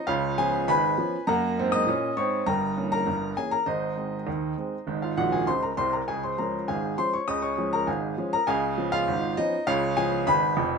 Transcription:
0.07 C#2 C#3 F4 C#5 F5
0.38 F3 B3 C#4 G#4 G#5
0.68 G#1 G#2 B4 G#5 B5
0.98 F3 B3 C#4
1.27 F#2 A#3 A#4 F#5 A#5
1.58 G#2 C4
1.72 D#5 D#6
1.87 A#2 C#4
2.17 G#2 C4 C#5 C#6
2.46 G1 G2 A#4 G5 A#5
2.76 E3 A#3 C#4
2.92 A#4 A#5
3.07 G1 G2
3.37 E3 A#3 C#4 G#4 G#5
3.51 A#4 A#5
3.66 G#1 G#2 D#4 C5 D#5
3.96 D#3 G#3 C4
4.27 D#2 D#3
4.57 D#3 G#3 C4
4.87 G#1 G#2
5.02 F4 F5
5.17 A#1 A#2 F#4 F#5
5.32 G#4 G#5
5.47 C#2 C#3 C5 C6
5.63 A#4 A#5
5.77 C2 C3 C5 C6
5.93 A#4 A#5
6.08 C#2 C#3 G#4 G#5
6.23 C5 C6
6.38 F3 G#3 C#4 A#4 A#5
6.68 G#1 G#2 G#4 F5 G#5
6.98 F3 G#3 C#4 C5 C6
7.13 C#5 C#6
7.28 C#2 C#3 D#5 D#6
7.42 C#5 C#6
7.58 F3 G#3 C#4
7.73 A#4 A#5
7.87 G#1 G#2 G#4 F5 G#5
8.18 F3 G#3 C#4
8.33 A#4 A#5
8.47 C#2 C#3 G#4 F5 G#5
8.78 F3 B3 C#4
8.92 F4 F5
9.08 G#1 G#2
9.37 F3 B3 C#4 D#4 D#5
9.67 C#2 C#3 F4 C#5 F5
9.97 F3 B3 C#4 G#4 G#5
10.27 G#1 G#2 B4 G#5 B5
10.57 F1 F2

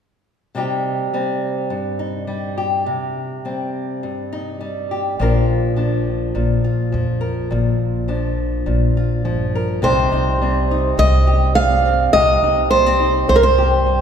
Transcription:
0.55 C3 G3 C4 D#4 G4
1.14 G3 C4
1.70 G2
1.99 D#4
2.27 G3
2.58 G4
2.86 C3
3.45 G3 C4
4.03 G2
4.33 D#4
4.61 G3
4.91 G4
5.19 A#1 A#2 F3 D4 F4 A#4
5.76 F3 D4
6.35 A#1 A#2
6.64 F4
6.92 F2 F3
7.21 A#4
7.51 A#1 A#2
8.08 F3 D4
8.66 A#1 A#2
8.97 F4
9.25 G2 F3
9.55 A#4
9.82 C2 C3 G3 C4 D#4 G4 C5
10.12 C2 D#4
10.42 G3 C4
10.71 D#4
10.97 C2 G2 D#5
11.27 G4
11.55 G3 F5
11.85 C4
12.13 C2 C3 G4 D#5
12.42 C2 D#4
12.71 G3 A#3 C5
12.86 C4
13.00 D#4
13.28 C2 G2 C5
13.36 A#4
13.43 C5
13.58 G4
13.86 G3

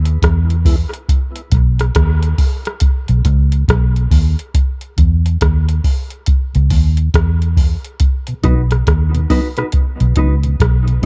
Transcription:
Already playing: D#2
0.05 closed hi-hat
0.22 E2, kick, cross-stick, closed hi-hat
0.50 E2 B2, closed hi-hat
0.65 G#3 B3 E4, kick, open hi-hat
0.92 E2 B2, closed hi-hat
1.09 kick, closed hi-hat
1.36 closed hi-hat
1.52 B1, kick, closed hi-hat
1.79 cross-stick, closed hi-hat
1.95 D#2, kick, cross-stick, closed hi-hat
2.23 closed hi-hat
2.38 kick, open hi-hat
2.65 cross-stick, closed hi-hat
2.80 kick, closed hi-hat
3.08 B1, closed hi-hat
3.25 C#2, kick, closed hi-hat
3.52 closed hi-hat
3.68 B1, kick, cross-stick, closed hi-hat
3.96 closed hi-hat
4.11 D#2, kick, open hi-hat
4.39 closed hi-hat
4.54 kick, closed hi-hat
4.81 closed hi-hat
4.98 E2, kick, closed hi-hat
5.26 closed hi-hat
5.41 D#2, kick, cross-stick, closed hi-hat
5.69 closed hi-hat
5.84 kick, open hi-hat
6.10 closed hi-hat
6.26 kick, closed hi-hat
6.55 C#2, closed hi-hat
6.70 D#2, kick, open hi-hat
6.97 closed hi-hat
7.14 E2, kick, cross-stick, closed hi-hat
7.42 closed hi-hat
7.57 kick, open hi-hat
7.84 closed hi-hat
8.00 kick, closed hi-hat
8.27 B2, closed hi-hat
8.44 B1 F#3 B3 D#4 F#4 B4, kick, closed hi-hat
8.71 B2, cross-stick, closed hi-hat
8.87 D#2, kick, cross-stick, closed hi-hat
9.15 B2, closed hi-hat
9.30 F#3 B3 D#4 F#4 B4, kick, open hi-hat
9.57 B2 D#4 F#4 B4, cross-stick, closed hi-hat
9.72 kick, closed hi-hat
10.00 B1 B2, closed hi-hat
10.16 C#2 F#3 B3 D#4 F#4 B4, kick, closed hi-hat
10.43 B2, closed hi-hat
10.60 B1, kick, cross-stick, closed hi-hat
10.87 B2, closed hi-hat
11.02 F#3

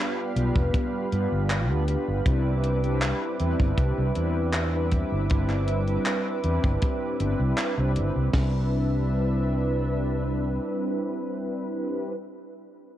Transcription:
Already playing: G3 B3 D4 F4 G4 B4 F5 B5
0.35 B1 G3 B3 D4 F4 B4, closed hi-hat
0.56 F1, kick
0.74 kick, closed hi-hat
1.11 G2 G3 B3 D4 F4 B4, closed hi-hat
1.32 G1
1.50 clap, closed hi-hat
1.70 D2 G3 B3 D4 F4 B4
1.88 G3 B3 D4 F4 B4, closed hi-hat
2.08 G1
2.26 C2 G3 C4 D4 E4 B4 E5 D6, kick, closed hi-hat
2.64 closed hi-hat
2.84 G3 C4 D4 E4 B4, closed hi-hat
3.02 clap, closed hi-hat
3.40 E2 G3 C4 D4 E4 B4, closed hi-hat
3.60 G1, kick
3.78 C2, kick, closed hi-hat
3.98 C2
4.16 E2 G3 C4 D4 E4 B4, closed hi-hat
4.53 clap, closed hi-hat
4.73 G3 C4 D4 E4 B4
4.91 G3 C4 D4 E4 B4, kick, closed hi-hat
5.12 G1
5.29 G3 C4 D4 E4 B4, kick, closed hi-hat
5.50 clap
5.68 closed hi-hat
5.87 G3 C4 D4 E4 B4, closed hi-hat
6.06 clap, closed hi-hat
6.43 E2 G3 C4 D4 E4 B4, closed hi-hat
6.64 G1, kick
6.82 kick, closed hi-hat
7.20 G1 G3 C4 D4 E4 B4, closed hi-hat
7.40 C2
7.58 clap, closed hi-hat
7.78 C2 G3 C4 D4 E4 B4
7.95 G1 G3 C4 D4 E4 B4, closed hi-hat
8.16 C2
8.31 C2 G3 C4 D4 E4 B4 E5, kick, snare, open hi-hat
8.36 B4

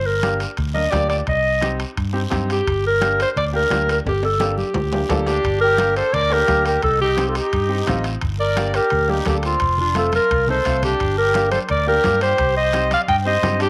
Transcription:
Already playing: G1
0.06 A#4
0.23 A#3 D4 G4, bombo rim, high conga, high timbale, short guiro
0.40 high timbale, short guiro
0.57 D2, bombo low, high conga, high timbale, long guiro
0.74 A#3 D4 A#4 D#5, high conga
0.90 D2 A#3 D4 G4 D5, bombo low, bombo rim, high conga, high timbale, low timbale, short guiro
1.09 D5, bombo rim, high timbale, short guiro
1.27 C2 D#5, bombo low, high conga, high timbale, long guiro
1.61 C4 D#4 G4, bombo rim, high conga, high timbale, short guiro
1.80 high timbale, short guiro
1.97 G2, bombo low, high conga, high timbale, long guiro
2.13 C4 D#4 G4
2.30 G2 C4 D#4 G4, bombo low, bombo rim, high conga, high timbale, short guiro
2.50 G4, bombo rim, high timbale, short guiro
2.67 G1, bombo low, high conga, high timbale, long guiro
2.87 A#4
3.00 A#3 D4 G4, bombo rim, high conga, high timbale, short guiro
3.20 C5, high timbale, short guiro
3.36 D2 D5, bombo low, high conga, high timbale, long guiro
3.52 A#3 D4 G4 A#4
3.70 D2 A#3 D4 G4, bombo rim, high conga, high timbale, low timbale, short guiro
3.89 A#4, high timbale, short guiro
4.05 G1 G4, bombo low, high conga, high timbale, long guiro
4.23 A4, high timbale
4.40 A#3 D4 G4, bombo rim, high conga, high timbale, short guiro
4.58 G4, high conga, short guiro
4.74 D2, bombo low, high conga, low timbale, long guiro
4.91 A#3 D4 G4, high conga, low timbale
5.09 D2 A#3 D4 A4, bombo low, bombo rim, high conga, low timbale, short guiro
5.26 D4 G4, bombo rim, low timbale, short guiro
5.44 G1, bombo low, high conga, high timbale, long guiro
5.61 G4 A#4
5.78 A#3 D4 G4, bombo rim, high conga, high timbale, short guiro
5.96 A4 C5, high timbale, short guiro
6.13 D2 A#4 D5, bombo low, high conga, high timbale, long guiro
6.30 A#3 D4 G4 A4 A#4
6.47 D2 A#3 D4 G4, bombo low, bombo rim, high conga, high timbale, short guiro
6.65 G4 A#4, bombo rim, high timbale, short guiro
6.82 C2 D#4 A4, bombo low, high conga, high timbale, long guiro
7.00 D#4 G4, low conga
7.16 C4 D#4 G4, bombo rim, high conga, high timbale, short guiro
7.28 F4 A4
7.35 D#4 G4, high timbale, short guiro
7.53 G2, bombo low, high conga, high timbale, long guiro
7.69 C4 D#4 G4
7.87 A1 C4 D#4 F4, bombo low, bombo rim, high conga, low conga, high timbale, low timbale, short guiro
8.04 bombo rim, high timbale, short guiro
8.21 G1, bombo low, high conga, high timbale, long guiro
8.39 A#4 D5
8.56 A#3 D4 G4, bombo rim, high conga, high timbale, short guiro
8.74 G4 A#4, high timbale, short guiro
8.90 D2, bombo low, high conga, high timbale, long guiro
9.08 A#3 D4 D#4 G4, high conga
9.26 D2 A#3 D4 G4 A4, bombo low, bombo rim, high conga, high timbale, short guiro
9.42 C4 F4, high timbale, short guiro
9.60 F1, bombo low, high conga, high timbale, long guiro
9.77 D4 F4, low conga
9.94 A3 C4 F4, bombo rim, high conga, high timbale, short guiro
9.98 A4
10.12 F4 A#4, high conga, high timbale, short guiro
10.31 C2, bombo low, high timbale, long guiro
10.47 A3 C4 D#4 A4 C5, low conga
10.65 C2 A3 C4 F4, bombo low, bombo rim, high timbale, short guiro
10.83 D4 G4, low conga, high timbale, short guiro
11.00 G1, bombo low, high conga, high timbale, long guiro
11.17 G4 A#4
11.34 A#3 D4 G4, bombo rim, high conga, high timbale, short guiro
11.51 A4 C5, high conga, high timbale, short guiro
11.69 D2 A#4 D5, bombo low, high conga, high timbale, long guiro
11.86 A#3 D4 G4 A#4
12.04 G2 A#3 D4 G4, bombo low, bombo rim, high conga, high timbale, low timbale, short guiro
12.21 G4 C5, bombo rim, high timbale, short guiro
12.38 C2, bombo low, high conga, high timbale, long guiro
12.55 C5 D#5
12.73 C4 D#4 G4, bombo rim, high conga, high timbale, short guiro
12.91 D5 F5, high conga, high timbale, short guiro
13.07 G2 D#5 G5, bombo low, high conga, high timbale, long guiro
13.24 C4 D#4 G4 C5 D#5
13.43 G2 C4 D#4 G4, bombo rim, high conga, low conga, high timbale, low timbale, short guiro
13.58 D4 G4, bombo rim, high timbale, short guiro

